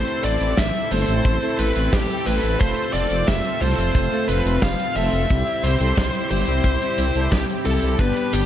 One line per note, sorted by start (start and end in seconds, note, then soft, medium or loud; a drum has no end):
0.00 0.37 A3 medium
0.00 0.37 C4 medium
0.00 7.95 C4 medium
0.00 0.37 E4 medium
0.00 2.57 E4 medium
0.00 0.37 A4 medium
0.00 5.26 A4 medium
0.00 0.24 C5 loud
0.00 0.25 C6 loud
0.07 closed hi-hat soft
0.07 shaker soft
0.23 0.37 A1 loud
0.23 0.59 D5 loud
0.23 0.59 D6 loud
0.23 closed hi-hat loud
0.23 shaker medium
0.40 0.54 A1 medium
0.40 0.54 A3 medium
0.40 0.54 C4 medium
0.40 0.54 E4 medium
0.40 0.54 B4 medium
0.40 closed hi-hat medium
0.40 shaker medium
0.57 0.71 A1 loud
0.57 0.93 E5 loud
0.57 0.93 E6 loud
0.57 kick loud
0.57 snare loud
0.57 closed hi-hat medium
0.57 shaker medium
0.75 closed hi-hat soft
0.75 shaker soft
0.91 1.05 G1 loud
0.91 1.38 A3 medium
0.91 1.38 C4 medium
0.91 1.38 E4 medium
0.91 1.38 A4 loud
0.91 1.55 C5 loud
0.91 1.55 C6 loud
0.91 open hi-hat medium
0.91 shaker medium
1.08 1.21 A1 medium
1.08 closed hi-hat medium
1.08 shaker soft
1.25 1.38 A1 loud
1.25 kick loud
1.25 closed hi-hat medium
1.25 shaker medium
1.42 1.72 A3 medium
1.42 1.72 C4 medium
1.42 1.72 E4 medium
1.42 1.72 A4 loud
1.42 closed hi-hat soft
1.42 shaker soft
1.59 1.72 A1 loud
1.59 1.94 B4 loud
1.59 1.94 B5 loud
1.59 closed hi-hat medium
1.59 shaker medium
1.75 1.89 A1 medium
1.75 1.89 A3 loud
1.75 1.89 C4 medium
1.75 1.89 E4 medium
1.75 1.89 B4 loud
1.75 closed hi-hat medium
1.75 shaker soft
1.92 2.06 A1 loud
1.92 2.27 G4 medium
1.92 2.27 G5 loud
1.92 kick loud
1.92 snare loud
1.92 closed hi-hat medium
1.92 shaker medium
2.10 closed hi-hat soft
2.10 shaker soft
2.26 2.39 A1 medium
2.26 2.56 A3 medium
2.26 2.56 C4 medium
2.26 2.56 E4 medium
2.26 2.56 A4 loud
2.26 2.60 B4 loud
2.26 2.61 B5 loud
2.26 open hi-hat medium
2.26 shaker medium
2.43 2.56 A1 medium
2.43 closed hi-hat medium
2.43 shaker soft
2.60 2.73 F1 loud
2.60 3.07 A3 medium
2.60 3.07 C4 medium
2.60 3.07 F4 medium
2.60 5.27 F4 medium
2.60 3.07 A4 medium
2.60 2.93 C5 loud
2.60 2.95 C6 loud
2.60 kick loud
2.60 closed hi-hat medium
2.60 shaker medium
2.77 closed hi-hat soft
2.77 shaker soft
2.93 3.07 F1 loud
2.93 3.28 D5 loud
2.93 3.29 D6 loud
2.93 closed hi-hat medium
2.93 shaker medium
3.10 3.24 F1 medium
3.10 3.24 A3 medium
3.10 3.24 C4 medium
3.10 3.24 F4 medium
3.10 3.24 C5 medium
3.10 closed hi-hat medium
3.10 shaker medium
3.27 3.41 F1 loud
3.27 3.62 E5 loud
3.27 3.62 E6 loud
3.27 kick loud
3.27 snare loud
3.27 closed hi-hat medium
3.27 shaker medium
3.44 closed hi-hat soft
3.44 shaker soft
3.61 3.74 C2 loud
3.61 4.08 A3 medium
3.61 4.08 C4 medium
3.61 4.08 F4 medium
3.61 4.08 A4 loud
3.61 4.29 C5 loud
3.61 4.31 C6 loud
3.61 open hi-hat medium
3.61 shaker medium
3.78 3.91 F1 medium
3.78 closed hi-hat medium
3.78 shaker soft
3.95 4.08 F1 loud
3.95 kick loud
3.95 closed hi-hat medium
3.95 shaker medium
4.12 4.41 A3 medium
4.12 4.41 C4 medium
4.12 4.41 F4 medium
4.12 4.41 A4 loud
4.12 closed hi-hat soft
4.12 shaker medium
4.28 4.42 F1 loud
4.28 4.60 B4 loud
4.28 4.60 B5 loud
4.28 closed hi-hat loud
4.28 shaker medium
4.45 4.58 F1 medium
4.45 4.59 A3 loud
4.45 4.59 C4 medium
4.45 4.59 F4 medium
4.45 4.59 C5 loud
4.45 closed hi-hat medium
4.45 shaker soft
4.62 4.75 F1 loud
4.62 4.96 F5 loud
4.62 4.97 F6 loud
4.62 kick loud
4.62 snare loud
4.62 closed hi-hat medium
4.62 shaker medium
4.79 closed hi-hat soft
4.79 shaker soft
4.96 5.09 F1 medium
4.96 5.26 A3 medium
4.96 5.26 C4 medium
4.96 5.26 F4 medium
4.96 5.26 A4 loud
4.96 5.66 E5 loud
4.96 5.66 E6 loud
4.96 open hi-hat medium
4.96 shaker medium
5.13 5.26 F1 medium
5.13 closed hi-hat medium
5.13 shaker soft
5.30 5.43 C2 loud
5.30 5.76 G3 medium
5.30 5.76 C4 medium
5.30 7.97 E4 medium
5.30 5.76 E4 medium
5.30 5.76 G4 medium
5.30 8.46 G4 medium
5.30 kick loud
5.30 closed hi-hat medium
5.30 shaker medium
5.47 closed hi-hat soft
5.47 shaker soft
5.63 5.76 C2 loud
5.63 6.27 C5 loud
5.63 6.27 C6 loud
5.63 closed hi-hat medium
5.63 shaker medium
5.80 5.93 C2 medium
5.80 5.93 G3 medium
5.80 5.93 C4 medium
5.80 5.93 E4 medium
5.80 5.93 A4 medium
5.80 closed hi-hat medium
5.80 shaker medium
5.97 6.10 C2 loud
5.97 kick loud
5.97 snare loud
5.97 closed hi-hat medium
5.97 shaker medium
6.14 closed hi-hat soft
6.14 shaker soft
6.31 6.44 G1 medium
6.31 6.77 G3 medium
6.31 6.77 C4 medium
6.31 6.77 E4 medium
6.31 6.77 G4 loud
6.31 7.28 C5 loud
6.31 7.28 C6 loud
6.31 open hi-hat medium
6.31 shaker medium
6.48 6.61 C2 medium
6.48 closed hi-hat medium
6.48 shaker soft
6.64 6.77 C2 loud
6.64 kick loud
6.64 closed hi-hat medium
6.64 shaker medium
6.81 7.11 G3 medium
6.81 7.11 C4 medium
6.81 7.11 E4 medium
6.81 7.11 G4 loud
6.81 closed hi-hat soft
6.81 shaker soft
6.98 7.11 C2 medium
6.98 closed hi-hat loud
6.98 shaker medium
7.15 7.28 C2 medium
7.15 7.28 G3 loud
7.15 7.28 C4 medium
7.15 7.28 E4 medium
7.15 7.28 A4 loud
7.15 closed hi-hat medium
7.15 shaker soft
7.32 7.45 C2 loud
7.32 7.41 G4 loud
7.32 7.46 G5 loud
7.32 kick loud
7.32 snare loud
7.32 closed hi-hat medium
7.32 shaker medium
7.49 closed hi-hat soft
7.49 shaker medium
7.65 7.79 C2 medium
7.65 7.95 G3 medium
7.65 7.95 C4 medium
7.65 7.95 E4 medium
7.65 7.95 G4 loud
7.65 8.00 A4 loud
7.65 8.01 A5 medium
7.65 open hi-hat medium
7.65 shaker medium
7.82 7.96 C2 medium
7.82 closed hi-hat medium
7.82 shaker medium
7.99 8.12 G1 loud
7.99 8.46 G3 medium
7.99 8.46 B3 medium
7.99 8.46 D4 medium
7.99 8.46 G4 medium
7.99 8.34 B4 loud
7.99 8.34 B5 loud
7.99 kick loud
7.99 closed hi-hat medium
7.99 shaker medium
8.16 closed hi-hat soft
8.16 shaker soft
8.33 8.46 G1 loud
8.33 8.46 G4 loud
8.33 8.46 G5 loud
8.33 closed hi-hat loud
8.33 shaker medium